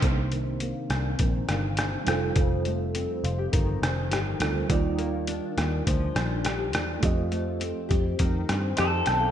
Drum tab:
HH |xxxxxxxx|xxxxxxxx|xxxxxxxx|xxxxxxxx|
SD |---r-rrr|-----rrr|---r-rrr|-----rrr|
BD |o---o---|o---o---|o---o---|o--oo---|